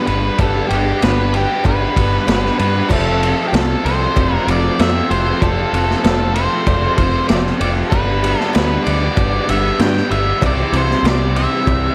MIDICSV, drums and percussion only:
0, 0, Header, 1, 2, 480
1, 0, Start_track
1, 0, Tempo, 626305
1, 306, Time_signature, 4, 2, 24, 8
1, 9158, End_track
2, 0, Start_track
2, 0, Title_t, "Drums"
2, 55, Note_on_c, 9, 51, 65
2, 132, Note_off_c, 9, 51, 0
2, 294, Note_on_c, 9, 51, 109
2, 299, Note_on_c, 9, 36, 127
2, 302, Note_on_c, 9, 56, 86
2, 370, Note_off_c, 9, 51, 0
2, 376, Note_off_c, 9, 36, 0
2, 378, Note_off_c, 9, 56, 0
2, 539, Note_on_c, 9, 51, 81
2, 616, Note_off_c, 9, 51, 0
2, 783, Note_on_c, 9, 51, 95
2, 793, Note_on_c, 9, 38, 122
2, 794, Note_on_c, 9, 56, 73
2, 860, Note_off_c, 9, 51, 0
2, 869, Note_off_c, 9, 38, 0
2, 870, Note_off_c, 9, 56, 0
2, 1024, Note_on_c, 9, 51, 69
2, 1100, Note_off_c, 9, 51, 0
2, 1257, Note_on_c, 9, 56, 89
2, 1265, Note_on_c, 9, 36, 103
2, 1266, Note_on_c, 9, 51, 97
2, 1333, Note_off_c, 9, 56, 0
2, 1342, Note_off_c, 9, 36, 0
2, 1343, Note_off_c, 9, 51, 0
2, 1506, Note_on_c, 9, 36, 84
2, 1509, Note_on_c, 9, 51, 90
2, 1582, Note_off_c, 9, 36, 0
2, 1585, Note_off_c, 9, 51, 0
2, 1741, Note_on_c, 9, 56, 66
2, 1746, Note_on_c, 9, 51, 108
2, 1755, Note_on_c, 9, 38, 110
2, 1817, Note_off_c, 9, 56, 0
2, 1823, Note_off_c, 9, 51, 0
2, 1832, Note_off_c, 9, 38, 0
2, 1881, Note_on_c, 9, 38, 29
2, 1958, Note_off_c, 9, 38, 0
2, 1987, Note_on_c, 9, 51, 76
2, 2064, Note_off_c, 9, 51, 0
2, 2223, Note_on_c, 9, 56, 99
2, 2228, Note_on_c, 9, 36, 116
2, 2228, Note_on_c, 9, 49, 115
2, 2299, Note_off_c, 9, 56, 0
2, 2304, Note_off_c, 9, 49, 0
2, 2305, Note_off_c, 9, 36, 0
2, 2475, Note_on_c, 9, 51, 81
2, 2551, Note_off_c, 9, 51, 0
2, 2707, Note_on_c, 9, 56, 72
2, 2711, Note_on_c, 9, 51, 109
2, 2720, Note_on_c, 9, 38, 113
2, 2784, Note_off_c, 9, 56, 0
2, 2788, Note_off_c, 9, 51, 0
2, 2797, Note_off_c, 9, 38, 0
2, 2956, Note_on_c, 9, 51, 75
2, 3033, Note_off_c, 9, 51, 0
2, 3189, Note_on_c, 9, 56, 101
2, 3193, Note_on_c, 9, 36, 109
2, 3193, Note_on_c, 9, 51, 110
2, 3266, Note_off_c, 9, 56, 0
2, 3270, Note_off_c, 9, 36, 0
2, 3270, Note_off_c, 9, 51, 0
2, 3435, Note_on_c, 9, 51, 83
2, 3512, Note_off_c, 9, 51, 0
2, 3670, Note_on_c, 9, 56, 85
2, 3674, Note_on_c, 9, 51, 105
2, 3683, Note_on_c, 9, 38, 122
2, 3747, Note_off_c, 9, 56, 0
2, 3750, Note_off_c, 9, 51, 0
2, 3759, Note_off_c, 9, 38, 0
2, 3916, Note_on_c, 9, 51, 74
2, 3993, Note_off_c, 9, 51, 0
2, 4154, Note_on_c, 9, 36, 115
2, 4154, Note_on_c, 9, 56, 109
2, 4155, Note_on_c, 9, 51, 98
2, 4231, Note_off_c, 9, 36, 0
2, 4231, Note_off_c, 9, 51, 0
2, 4231, Note_off_c, 9, 56, 0
2, 4398, Note_on_c, 9, 51, 78
2, 4475, Note_off_c, 9, 51, 0
2, 4526, Note_on_c, 9, 38, 35
2, 4603, Note_off_c, 9, 38, 0
2, 4629, Note_on_c, 9, 56, 82
2, 4631, Note_on_c, 9, 51, 90
2, 4640, Note_on_c, 9, 38, 125
2, 4706, Note_off_c, 9, 56, 0
2, 4708, Note_off_c, 9, 51, 0
2, 4717, Note_off_c, 9, 38, 0
2, 4870, Note_on_c, 9, 51, 78
2, 4947, Note_off_c, 9, 51, 0
2, 5108, Note_on_c, 9, 51, 101
2, 5111, Note_on_c, 9, 36, 113
2, 5116, Note_on_c, 9, 56, 113
2, 5184, Note_off_c, 9, 51, 0
2, 5188, Note_off_c, 9, 36, 0
2, 5192, Note_off_c, 9, 56, 0
2, 5346, Note_on_c, 9, 51, 84
2, 5350, Note_on_c, 9, 36, 87
2, 5423, Note_off_c, 9, 51, 0
2, 5427, Note_off_c, 9, 36, 0
2, 5584, Note_on_c, 9, 51, 105
2, 5593, Note_on_c, 9, 38, 113
2, 5597, Note_on_c, 9, 56, 92
2, 5661, Note_off_c, 9, 51, 0
2, 5670, Note_off_c, 9, 38, 0
2, 5674, Note_off_c, 9, 56, 0
2, 5722, Note_on_c, 9, 38, 32
2, 5799, Note_off_c, 9, 38, 0
2, 5829, Note_on_c, 9, 51, 82
2, 5906, Note_off_c, 9, 51, 0
2, 6067, Note_on_c, 9, 56, 104
2, 6071, Note_on_c, 9, 51, 103
2, 6072, Note_on_c, 9, 36, 127
2, 6143, Note_off_c, 9, 56, 0
2, 6148, Note_off_c, 9, 36, 0
2, 6148, Note_off_c, 9, 51, 0
2, 6313, Note_on_c, 9, 51, 90
2, 6389, Note_off_c, 9, 51, 0
2, 6440, Note_on_c, 9, 38, 32
2, 6517, Note_off_c, 9, 38, 0
2, 6549, Note_on_c, 9, 56, 75
2, 6550, Note_on_c, 9, 51, 112
2, 6559, Note_on_c, 9, 38, 127
2, 6626, Note_off_c, 9, 56, 0
2, 6627, Note_off_c, 9, 51, 0
2, 6636, Note_off_c, 9, 38, 0
2, 6794, Note_on_c, 9, 51, 88
2, 6871, Note_off_c, 9, 51, 0
2, 7025, Note_on_c, 9, 56, 116
2, 7026, Note_on_c, 9, 51, 98
2, 7030, Note_on_c, 9, 36, 109
2, 7102, Note_off_c, 9, 56, 0
2, 7103, Note_off_c, 9, 51, 0
2, 7107, Note_off_c, 9, 36, 0
2, 7271, Note_on_c, 9, 51, 90
2, 7347, Note_off_c, 9, 51, 0
2, 7506, Note_on_c, 9, 51, 100
2, 7515, Note_on_c, 9, 38, 119
2, 7515, Note_on_c, 9, 56, 85
2, 7582, Note_off_c, 9, 51, 0
2, 7591, Note_off_c, 9, 56, 0
2, 7592, Note_off_c, 9, 38, 0
2, 7642, Note_on_c, 9, 38, 34
2, 7718, Note_off_c, 9, 38, 0
2, 7751, Note_on_c, 9, 51, 71
2, 7827, Note_off_c, 9, 51, 0
2, 7983, Note_on_c, 9, 56, 101
2, 7988, Note_on_c, 9, 36, 112
2, 7991, Note_on_c, 9, 51, 117
2, 8060, Note_off_c, 9, 56, 0
2, 8065, Note_off_c, 9, 36, 0
2, 8068, Note_off_c, 9, 51, 0
2, 8226, Note_on_c, 9, 51, 79
2, 8302, Note_off_c, 9, 51, 0
2, 8359, Note_on_c, 9, 38, 32
2, 8436, Note_off_c, 9, 38, 0
2, 8469, Note_on_c, 9, 51, 90
2, 8476, Note_on_c, 9, 56, 73
2, 8478, Note_on_c, 9, 38, 121
2, 8546, Note_off_c, 9, 51, 0
2, 8553, Note_off_c, 9, 56, 0
2, 8555, Note_off_c, 9, 38, 0
2, 8708, Note_on_c, 9, 51, 78
2, 8785, Note_off_c, 9, 51, 0
2, 8947, Note_on_c, 9, 36, 118
2, 8949, Note_on_c, 9, 51, 98
2, 8949, Note_on_c, 9, 56, 108
2, 9023, Note_off_c, 9, 36, 0
2, 9025, Note_off_c, 9, 51, 0
2, 9026, Note_off_c, 9, 56, 0
2, 9158, End_track
0, 0, End_of_file